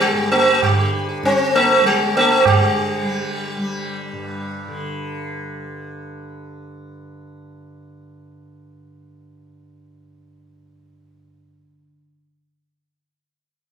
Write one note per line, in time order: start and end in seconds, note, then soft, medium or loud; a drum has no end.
0.00 0.12 G2 medium
0.00 0.68 D3 medium
0.00 1.24 G3 medium
0.00 0.31 G3 loud
0.00 0.14 G4 soft
0.00 tabla te medium
0.12 4.12 G2 medium
0.12 0.45 G4 soft
0.32 0.62 A3 medium
0.32 tabla na medium
0.47 0.75 G4 soft
0.62 0.91 G3 medium
0.62 tabla na loud
0.62 tabla ge loud
0.69 2.46 D3 medium
0.77 0.91 G4 soft
0.93 1.07 G4 soft
1.09 1.37 G4 soft
1.23 1.80 G3 medium
1.23 1.56 C4 loud
1.23 tabla ke medium
1.39 1.67 G4 soft
1.54 1.86 A3 loud
1.54 tabla te medium
1.80 3.02 G3 medium
1.85 2.16 G3 loud
1.85 tabla te medium
2.16 2.46 A3 loud
2.16 tabla na medium
2.31 2.59 G4 soft
2.45 5.66 G3 medium
2.45 tabla na loud
2.45 tabla ge loud
3.02 3.57 G3 medium
3.57 10.11 G3 medium
4.13 11.28 G2 medium
4.68 11.83 D3 medium